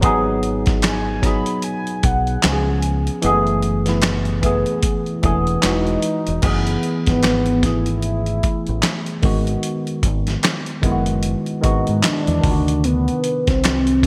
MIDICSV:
0, 0, Header, 1, 6, 480
1, 0, Start_track
1, 0, Tempo, 800000
1, 18, Time_signature, 4, 2, 24, 8
1, 8440, End_track
2, 0, Start_track
2, 0, Title_t, "Soft synth lead"
2, 0, Program_c, 0, 80
2, 507, Note_on_c, 0, 80, 99
2, 745, Note_on_c, 0, 83, 108
2, 754, Note_off_c, 0, 80, 0
2, 981, Note_off_c, 0, 83, 0
2, 985, Note_on_c, 0, 80, 104
2, 1226, Note_on_c, 0, 78, 87
2, 1235, Note_off_c, 0, 80, 0
2, 1468, Note_on_c, 0, 80, 88
2, 1477, Note_off_c, 0, 78, 0
2, 1845, Note_off_c, 0, 80, 0
2, 3385, Note_on_c, 0, 63, 100
2, 3864, Note_on_c, 0, 59, 94
2, 3873, Note_off_c, 0, 63, 0
2, 4243, Note_off_c, 0, 59, 0
2, 4251, Note_on_c, 0, 59, 96
2, 4589, Note_on_c, 0, 64, 112
2, 4598, Note_off_c, 0, 59, 0
2, 5543, Note_off_c, 0, 64, 0
2, 7225, Note_on_c, 0, 62, 106
2, 7706, Note_on_c, 0, 59, 101
2, 7715, Note_off_c, 0, 62, 0
2, 8084, Note_on_c, 0, 60, 100
2, 8093, Note_off_c, 0, 59, 0
2, 8434, Note_off_c, 0, 60, 0
2, 8440, End_track
3, 0, Start_track
3, 0, Title_t, "Tine electric piano"
3, 0, Program_c, 1, 4
3, 0, Control_c, 1, 64, 127
3, 6, Note_on_c, 1, 54, 112
3, 13, Note_on_c, 1, 59, 108
3, 22, Note_on_c, 1, 63, 103
3, 27, Control_c, 1, 64, 0
3, 28, Note_on_c, 1, 68, 121
3, 123, Control_c, 1, 64, 127
3, 698, Note_off_c, 1, 54, 0
3, 702, Note_off_c, 1, 59, 0
3, 706, Note_off_c, 1, 63, 0
3, 709, Note_off_c, 1, 68, 0
3, 733, Note_on_c, 1, 54, 75
3, 738, Note_on_c, 1, 59, 63
3, 747, Note_on_c, 1, 63, 67
3, 756, Note_on_c, 1, 68, 81
3, 1451, Note_off_c, 1, 59, 0
3, 1451, Note_on_c, 1, 53, 74
3, 1455, Note_off_c, 1, 54, 0
3, 1459, Note_on_c, 1, 59, 68
3, 1463, Note_off_c, 1, 63, 0
3, 1465, Control_c, 1, 64, 0
3, 1466, Note_on_c, 1, 61, 70
3, 1467, Note_off_c, 1, 68, 0
3, 1475, Note_on_c, 1, 66, 67
3, 1513, Note_off_c, 1, 66, 0
3, 1513, Note_on_c, 1, 68, 80
3, 1574, Control_c, 1, 64, 127
3, 1912, Note_off_c, 1, 53, 0
3, 1916, Note_off_c, 1, 59, 0
3, 1919, Note_off_c, 1, 61, 0
3, 1931, Note_on_c, 1, 52, 111
3, 1938, Note_on_c, 1, 56, 79
3, 1943, Note_off_c, 1, 68, 0
3, 1945, Control_c, 1, 64, 0
3, 1945, Note_on_c, 1, 59, 102
3, 1956, Note_on_c, 1, 68, 119
3, 1978, Note_on_c, 1, 57, 107
3, 1984, Note_off_c, 1, 56, 0
3, 2046, Control_c, 1, 64, 127
3, 2292, Note_off_c, 1, 52, 0
3, 2299, Note_off_c, 1, 59, 0
3, 2304, Note_off_c, 1, 68, 0
3, 2312, Note_on_c, 1, 52, 80
3, 2314, Note_off_c, 1, 57, 0
3, 2321, Note_on_c, 1, 57, 71
3, 2326, Note_on_c, 1, 59, 74
3, 2334, Note_on_c, 1, 64, 86
3, 2637, Note_off_c, 1, 52, 0
3, 2641, Note_off_c, 1, 57, 0
3, 2644, Note_off_c, 1, 59, 0
3, 2648, Note_off_c, 1, 64, 0
3, 2653, Note_on_c, 1, 52, 86
3, 2661, Note_on_c, 1, 57, 74
3, 2668, Note_on_c, 1, 59, 76
3, 2676, Note_on_c, 1, 68, 100
3, 3113, Note_off_c, 1, 52, 0
3, 3117, Note_off_c, 1, 57, 0
3, 3120, Note_off_c, 1, 59, 0
3, 3124, Note_off_c, 1, 68, 0
3, 3133, Note_on_c, 1, 52, 84
3, 3139, Note_on_c, 1, 57, 76
3, 3148, Note_on_c, 1, 59, 77
3, 3153, Note_on_c, 1, 68, 97
3, 3366, Note_off_c, 1, 52, 0
3, 3373, Note_on_c, 1, 52, 84
3, 3379, Note_off_c, 1, 57, 0
3, 3381, Note_on_c, 1, 56, 79
3, 3383, Note_off_c, 1, 59, 0
3, 3385, Note_off_c, 1, 68, 0
3, 3385, Control_c, 1, 64, 0
3, 3390, Note_on_c, 1, 63, 75
3, 3395, Note_on_c, 1, 66, 95
3, 3507, Control_c, 1, 64, 127
3, 3833, Note_off_c, 1, 52, 0
3, 3837, Note_off_c, 1, 56, 0
3, 3841, Note_off_c, 1, 63, 0
3, 3844, Note_off_c, 1, 66, 0
3, 3852, Note_on_c, 1, 52, 92
3, 3859, Note_on_c, 1, 57, 80
3, 3866, Control_c, 1, 64, 0
3, 3867, Note_on_c, 1, 59, 80
3, 3873, Note_on_c, 1, 68, 98
3, 3957, Control_c, 1, 64, 127
3, 4541, Note_off_c, 1, 52, 0
3, 4545, Note_off_c, 1, 57, 0
3, 4549, Note_off_c, 1, 59, 0
3, 4552, Note_off_c, 1, 68, 0
3, 4573, Note_on_c, 1, 52, 67
3, 4577, Note_on_c, 1, 57, 62
3, 4586, Note_on_c, 1, 59, 64
3, 4592, Note_on_c, 1, 68, 75
3, 5491, Note_off_c, 1, 52, 0
3, 5492, Note_off_c, 1, 57, 0
3, 5497, Note_off_c, 1, 59, 0
3, 5500, Note_off_c, 1, 68, 0
3, 5531, Note_on_c, 1, 51, 86
3, 5538, Note_on_c, 1, 56, 76
3, 5546, Control_c, 1, 64, 0
3, 5547, Note_on_c, 1, 59, 79
3, 5552, Note_on_c, 1, 66, 92
3, 5661, Control_c, 1, 64, 127
3, 6450, Note_off_c, 1, 51, 0
3, 6453, Note_off_c, 1, 56, 0
3, 6458, Note_off_c, 1, 59, 0
3, 6460, Note_off_c, 1, 66, 0
3, 6489, Note_on_c, 1, 51, 83
3, 6496, Note_on_c, 1, 56, 78
3, 6504, Note_on_c, 1, 59, 77
3, 6511, Note_on_c, 1, 64, 75
3, 6550, Note_on_c, 1, 66, 87
3, 6551, Note_off_c, 1, 64, 0
3, 6951, Note_off_c, 1, 51, 0
3, 6954, Note_off_c, 1, 56, 0
3, 6959, Note_off_c, 1, 59, 0
3, 6966, Note_on_c, 1, 51, 83
3, 6973, Note_on_c, 1, 56, 74
3, 6980, Note_off_c, 1, 66, 0
3, 6982, Note_on_c, 1, 59, 71
3, 6987, Note_on_c, 1, 66, 93
3, 7429, Note_off_c, 1, 51, 0
3, 7433, Note_off_c, 1, 56, 0
3, 7438, Note_off_c, 1, 59, 0
3, 7440, Note_off_c, 1, 66, 0
3, 7446, Note_on_c, 1, 51, 72
3, 7451, Note_on_c, 1, 48, 67
3, 7458, Note_on_c, 1, 62, 67
3, 7466, Control_c, 1, 64, 0
3, 7467, Note_on_c, 1, 65, 62
3, 7505, Note_on_c, 1, 66, 80
3, 7509, Note_off_c, 1, 65, 0
3, 7574, Control_c, 1, 64, 127
3, 8367, Note_off_c, 1, 51, 0
3, 8370, Note_off_c, 1, 48, 0
3, 8373, Note_off_c, 1, 62, 0
3, 8396, Note_off_c, 1, 66, 0
3, 8411, Note_on_c, 1, 51, 72
3, 8418, Note_on_c, 1, 60, 64
3, 8440, Note_off_c, 1, 51, 0
3, 8440, Note_off_c, 1, 60, 0
3, 8440, End_track
4, 0, Start_track
4, 0, Title_t, "Fingered electric bass"
4, 0, Program_c, 2, 33
4, 21, Note_on_c, 2, 32, 106
4, 858, Note_off_c, 2, 32, 0
4, 1226, Note_on_c, 2, 35, 96
4, 1415, Note_off_c, 2, 35, 0
4, 1469, Note_on_c, 2, 37, 93
4, 1850, Note_off_c, 2, 37, 0
4, 1946, Note_on_c, 2, 30, 97
4, 2780, Note_off_c, 2, 30, 0
4, 3147, Note_on_c, 2, 28, 82
4, 3336, Note_off_c, 2, 28, 0
4, 3386, Note_on_c, 2, 28, 93
4, 3576, Note_off_c, 2, 28, 0
4, 3769, Note_on_c, 2, 28, 83
4, 3844, Note_off_c, 2, 28, 0
4, 3861, Note_on_c, 2, 30, 100
4, 4053, Note_off_c, 2, 30, 0
4, 4249, Note_on_c, 2, 32, 83
4, 5038, Note_off_c, 2, 32, 0
4, 5214, Note_on_c, 2, 33, 89
4, 5287, Note_off_c, 2, 33, 0
4, 5542, Note_on_c, 2, 32, 83
4, 5733, Note_off_c, 2, 32, 0
4, 6021, Note_on_c, 2, 32, 88
4, 6213, Note_off_c, 2, 32, 0
4, 6501, Note_on_c, 2, 30, 83
4, 6807, Note_off_c, 2, 30, 0
4, 6984, Note_on_c, 2, 32, 82
4, 7096, Note_off_c, 2, 32, 0
4, 7133, Note_on_c, 2, 44, 89
4, 7206, Note_off_c, 2, 44, 0
4, 7369, Note_on_c, 2, 40, 89
4, 7444, Note_off_c, 2, 40, 0
4, 7464, Note_on_c, 2, 38, 85
4, 7847, Note_off_c, 2, 38, 0
4, 8088, Note_on_c, 2, 36, 79
4, 8440, Note_off_c, 2, 36, 0
4, 8440, End_track
5, 0, Start_track
5, 0, Title_t, "Muted fingered electric bass strokes"
5, 5067, Note_on_c, 9, 29, 46
5, 5127, Note_off_c, 9, 29, 0
5, 8440, End_track
6, 0, Start_track
6, 0, Title_t, "Drums"
6, 15, Note_on_c, 9, 42, 73
6, 18, Note_on_c, 9, 36, 109
6, 75, Note_off_c, 9, 42, 0
6, 78, Note_off_c, 9, 36, 0
6, 258, Note_on_c, 9, 42, 66
6, 318, Note_off_c, 9, 42, 0
6, 395, Note_on_c, 9, 42, 46
6, 401, Note_on_c, 9, 38, 39
6, 402, Note_on_c, 9, 36, 107
6, 455, Note_off_c, 9, 42, 0
6, 461, Note_off_c, 9, 38, 0
6, 462, Note_off_c, 9, 36, 0
6, 494, Note_on_c, 9, 42, 88
6, 499, Note_on_c, 9, 39, 83
6, 504, Note_on_c, 9, 38, 102
6, 554, Note_off_c, 9, 42, 0
6, 559, Note_off_c, 9, 39, 0
6, 564, Note_off_c, 9, 38, 0
6, 738, Note_on_c, 9, 36, 79
6, 741, Note_on_c, 9, 42, 70
6, 746, Note_on_c, 9, 38, 33
6, 798, Note_off_c, 9, 36, 0
6, 801, Note_off_c, 9, 42, 0
6, 806, Note_off_c, 9, 38, 0
6, 876, Note_on_c, 9, 42, 53
6, 936, Note_off_c, 9, 42, 0
6, 974, Note_on_c, 9, 42, 78
6, 1034, Note_off_c, 9, 42, 0
6, 1121, Note_on_c, 9, 42, 34
6, 1181, Note_off_c, 9, 42, 0
6, 1219, Note_on_c, 9, 42, 67
6, 1222, Note_on_c, 9, 36, 84
6, 1279, Note_off_c, 9, 42, 0
6, 1282, Note_off_c, 9, 36, 0
6, 1362, Note_on_c, 9, 42, 39
6, 1422, Note_off_c, 9, 42, 0
6, 1457, Note_on_c, 9, 39, 81
6, 1459, Note_on_c, 9, 42, 88
6, 1462, Note_on_c, 9, 38, 104
6, 1517, Note_off_c, 9, 39, 0
6, 1519, Note_off_c, 9, 42, 0
6, 1522, Note_off_c, 9, 38, 0
6, 1695, Note_on_c, 9, 42, 66
6, 1755, Note_off_c, 9, 42, 0
6, 1842, Note_on_c, 9, 42, 58
6, 1902, Note_off_c, 9, 42, 0
6, 1935, Note_on_c, 9, 42, 74
6, 1995, Note_off_c, 9, 42, 0
6, 2080, Note_on_c, 9, 42, 35
6, 2140, Note_off_c, 9, 42, 0
6, 2175, Note_on_c, 9, 42, 65
6, 2235, Note_off_c, 9, 42, 0
6, 2315, Note_on_c, 9, 42, 49
6, 2322, Note_on_c, 9, 38, 39
6, 2375, Note_off_c, 9, 42, 0
6, 2382, Note_off_c, 9, 38, 0
6, 2410, Note_on_c, 9, 42, 85
6, 2415, Note_on_c, 9, 39, 85
6, 2420, Note_on_c, 9, 38, 107
6, 2470, Note_off_c, 9, 42, 0
6, 2475, Note_off_c, 9, 39, 0
6, 2480, Note_off_c, 9, 38, 0
6, 2552, Note_on_c, 9, 42, 36
6, 2612, Note_off_c, 9, 42, 0
6, 2657, Note_on_c, 9, 36, 81
6, 2658, Note_on_c, 9, 42, 74
6, 2717, Note_off_c, 9, 36, 0
6, 2718, Note_off_c, 9, 42, 0
6, 2796, Note_on_c, 9, 42, 53
6, 2856, Note_off_c, 9, 42, 0
6, 2895, Note_on_c, 9, 42, 82
6, 2898, Note_on_c, 9, 36, 93
6, 2955, Note_off_c, 9, 42, 0
6, 2958, Note_off_c, 9, 36, 0
6, 3038, Note_on_c, 9, 42, 35
6, 3098, Note_off_c, 9, 42, 0
6, 3138, Note_on_c, 9, 42, 65
6, 3141, Note_on_c, 9, 36, 83
6, 3198, Note_off_c, 9, 42, 0
6, 3201, Note_off_c, 9, 36, 0
6, 3282, Note_on_c, 9, 42, 40
6, 3342, Note_off_c, 9, 42, 0
6, 3376, Note_on_c, 9, 39, 82
6, 3377, Note_on_c, 9, 42, 86
6, 3381, Note_on_c, 9, 38, 104
6, 3436, Note_off_c, 9, 39, 0
6, 3437, Note_off_c, 9, 42, 0
6, 3441, Note_off_c, 9, 38, 0
6, 3520, Note_on_c, 9, 42, 36
6, 3580, Note_off_c, 9, 42, 0
6, 3615, Note_on_c, 9, 42, 68
6, 3675, Note_off_c, 9, 42, 0
6, 3760, Note_on_c, 9, 42, 57
6, 3820, Note_off_c, 9, 42, 0
6, 3853, Note_on_c, 9, 42, 71
6, 3856, Note_on_c, 9, 49, 92
6, 3858, Note_on_c, 9, 36, 102
6, 3913, Note_off_c, 9, 42, 0
6, 3916, Note_off_c, 9, 49, 0
6, 3918, Note_off_c, 9, 36, 0
6, 4000, Note_on_c, 9, 42, 49
6, 4060, Note_off_c, 9, 42, 0
6, 4098, Note_on_c, 9, 42, 61
6, 4158, Note_off_c, 9, 42, 0
6, 4239, Note_on_c, 9, 42, 44
6, 4244, Note_on_c, 9, 36, 100
6, 4245, Note_on_c, 9, 38, 37
6, 4299, Note_off_c, 9, 42, 0
6, 4304, Note_off_c, 9, 36, 0
6, 4305, Note_off_c, 9, 38, 0
6, 4336, Note_on_c, 9, 42, 83
6, 4341, Note_on_c, 9, 39, 78
6, 4346, Note_on_c, 9, 38, 98
6, 4396, Note_off_c, 9, 42, 0
6, 4401, Note_off_c, 9, 39, 0
6, 4406, Note_off_c, 9, 38, 0
6, 4474, Note_on_c, 9, 42, 48
6, 4534, Note_off_c, 9, 42, 0
6, 4578, Note_on_c, 9, 36, 79
6, 4579, Note_on_c, 9, 42, 64
6, 4584, Note_on_c, 9, 38, 30
6, 4638, Note_off_c, 9, 36, 0
6, 4639, Note_off_c, 9, 42, 0
6, 4644, Note_off_c, 9, 38, 0
6, 4716, Note_on_c, 9, 42, 51
6, 4776, Note_off_c, 9, 42, 0
6, 4815, Note_on_c, 9, 42, 77
6, 4875, Note_off_c, 9, 42, 0
6, 4958, Note_on_c, 9, 42, 42
6, 5018, Note_off_c, 9, 42, 0
6, 5059, Note_on_c, 9, 42, 66
6, 5062, Note_on_c, 9, 36, 76
6, 5119, Note_off_c, 9, 42, 0
6, 5122, Note_off_c, 9, 36, 0
6, 5200, Note_on_c, 9, 42, 34
6, 5260, Note_off_c, 9, 42, 0
6, 5295, Note_on_c, 9, 39, 80
6, 5297, Note_on_c, 9, 42, 83
6, 5300, Note_on_c, 9, 38, 94
6, 5355, Note_off_c, 9, 39, 0
6, 5357, Note_off_c, 9, 42, 0
6, 5360, Note_off_c, 9, 38, 0
6, 5438, Note_on_c, 9, 42, 43
6, 5498, Note_off_c, 9, 42, 0
6, 5535, Note_on_c, 9, 46, 47
6, 5539, Note_on_c, 9, 36, 95
6, 5595, Note_off_c, 9, 46, 0
6, 5599, Note_off_c, 9, 36, 0
6, 5682, Note_on_c, 9, 42, 54
6, 5742, Note_off_c, 9, 42, 0
6, 5778, Note_on_c, 9, 42, 71
6, 5838, Note_off_c, 9, 42, 0
6, 5922, Note_on_c, 9, 42, 48
6, 5982, Note_off_c, 9, 42, 0
6, 6018, Note_on_c, 9, 36, 80
6, 6018, Note_on_c, 9, 42, 68
6, 6078, Note_off_c, 9, 36, 0
6, 6078, Note_off_c, 9, 42, 0
6, 6161, Note_on_c, 9, 42, 46
6, 6167, Note_on_c, 9, 38, 38
6, 6221, Note_off_c, 9, 42, 0
6, 6227, Note_off_c, 9, 38, 0
6, 6258, Note_on_c, 9, 42, 87
6, 6263, Note_on_c, 9, 39, 83
6, 6268, Note_on_c, 9, 38, 106
6, 6318, Note_off_c, 9, 42, 0
6, 6323, Note_off_c, 9, 39, 0
6, 6328, Note_off_c, 9, 38, 0
6, 6398, Note_on_c, 9, 42, 44
6, 6458, Note_off_c, 9, 42, 0
6, 6498, Note_on_c, 9, 36, 75
6, 6501, Note_on_c, 9, 42, 67
6, 6558, Note_off_c, 9, 36, 0
6, 6561, Note_off_c, 9, 42, 0
6, 6637, Note_on_c, 9, 42, 49
6, 6697, Note_off_c, 9, 42, 0
6, 6736, Note_on_c, 9, 42, 81
6, 6796, Note_off_c, 9, 42, 0
6, 6878, Note_on_c, 9, 42, 42
6, 6938, Note_off_c, 9, 42, 0
6, 6981, Note_on_c, 9, 42, 67
6, 6982, Note_on_c, 9, 36, 76
6, 7041, Note_off_c, 9, 42, 0
6, 7042, Note_off_c, 9, 36, 0
6, 7122, Note_on_c, 9, 42, 38
6, 7182, Note_off_c, 9, 42, 0
6, 7218, Note_on_c, 9, 39, 85
6, 7220, Note_on_c, 9, 42, 88
6, 7223, Note_on_c, 9, 38, 100
6, 7278, Note_off_c, 9, 39, 0
6, 7280, Note_off_c, 9, 42, 0
6, 7283, Note_off_c, 9, 38, 0
6, 7364, Note_on_c, 9, 42, 42
6, 7424, Note_off_c, 9, 42, 0
6, 7461, Note_on_c, 9, 36, 102
6, 7461, Note_on_c, 9, 46, 46
6, 7521, Note_off_c, 9, 36, 0
6, 7521, Note_off_c, 9, 46, 0
6, 7609, Note_on_c, 9, 42, 54
6, 7669, Note_off_c, 9, 42, 0
6, 7704, Note_on_c, 9, 42, 73
6, 7764, Note_off_c, 9, 42, 0
6, 7848, Note_on_c, 9, 42, 52
6, 7908, Note_off_c, 9, 42, 0
6, 7942, Note_on_c, 9, 42, 63
6, 8002, Note_off_c, 9, 42, 0
6, 8084, Note_on_c, 9, 42, 46
6, 8086, Note_on_c, 9, 36, 98
6, 8090, Note_on_c, 9, 38, 36
6, 8144, Note_off_c, 9, 42, 0
6, 8146, Note_off_c, 9, 36, 0
6, 8150, Note_off_c, 9, 38, 0
6, 8182, Note_on_c, 9, 42, 89
6, 8187, Note_on_c, 9, 39, 84
6, 8192, Note_on_c, 9, 38, 98
6, 8242, Note_off_c, 9, 42, 0
6, 8247, Note_off_c, 9, 39, 0
6, 8252, Note_off_c, 9, 38, 0
6, 8321, Note_on_c, 9, 42, 47
6, 8381, Note_off_c, 9, 42, 0
6, 8420, Note_on_c, 9, 36, 75
6, 8440, Note_off_c, 9, 36, 0
6, 8440, End_track
0, 0, End_of_file